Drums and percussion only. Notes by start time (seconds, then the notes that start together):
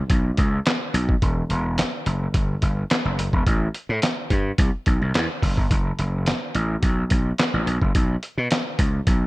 0.10 kick, closed hi-hat
0.37 kick, closed hi-hat
0.66 snare, clap, closed hi-hat
0.94 closed hi-hat
1.09 kick
1.22 kick, closed hi-hat
1.50 closed hi-hat
1.78 snare, clap, closed hi-hat
2.06 closed hi-hat
2.34 kick, closed hi-hat
2.62 kick, closed hi-hat
2.90 snare, clap, closed hi-hat
3.19 closed hi-hat
3.33 kick
3.47 kick, closed hi-hat
3.74 closed hi-hat
4.02 snare, clap, closed hi-hat
4.30 kick, closed hi-hat
4.58 kick, closed hi-hat
4.86 kick, closed hi-hat
5.14 snare, clap, closed hi-hat
5.43 kick, open hi-hat
5.57 kick
5.71 kick, closed hi-hat
5.99 closed hi-hat
6.26 snare, clap, closed hi-hat
6.55 closed hi-hat
6.83 kick, closed hi-hat
7.10 kick, closed hi-hat
7.38 snare, clap, closed hi-hat
7.67 closed hi-hat
7.82 kick
7.95 kick, closed hi-hat
8.23 closed hi-hat
8.51 snare, clap, closed hi-hat
8.79 kick, closed hi-hat
9.07 kick, closed hi-hat